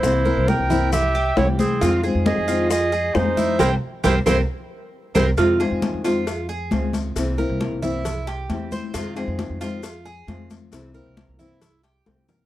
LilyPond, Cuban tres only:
\new Staff \with { instrumentName = "Cuban tres" } { \time 4/4 \key f \minor \tempo 4 = 135 r8 bes'4 e'4 g'4 c''8 | f'8 aes'4 f'4 aes'4 e'8 | <g' bes' c''>8 r8 <g' bes' c''>8 <g' bes' c''>8 r4. <g' bes' c''>8 | f'8 aes'4 f'4 aes'4 r8 |
r8 bes'4 e'4 g'4 c''8 | f'8 aes'4 f'4 aes'4 r8 | r8 bes'4 e'4 g'4 bes'8 | }